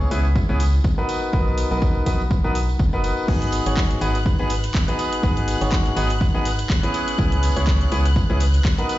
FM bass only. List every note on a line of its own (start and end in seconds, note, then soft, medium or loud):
0.11 0.43 C#2 medium
0.49 0.79 C#2 loud
0.84 0.94 C#2 medium
1.33 1.65 B1 loud
1.71 2.01 B1 loud
2.06 2.38 B1 loud
2.44 2.75 B1 loud
2.79 3.11 F#1 loud
3.28 3.60 G#1 loud
3.66 3.96 G#1 medium
4.01 4.33 G#1 loud
4.39 4.70 G#1 loud
4.75 4.84 G#1 medium
5.23 5.55 G#1 loud
5.62 5.92 G#1 medium
5.97 6.28 G#1 loud
6.35 6.65 G#1 loud
6.70 6.79 G#1 medium
7.18 7.50 C#2 loud
7.57 7.87 C#2 medium
7.92 8.23 C#2 loud
8.30 8.60 C#2 loud
8.65 8.74 C#2 medium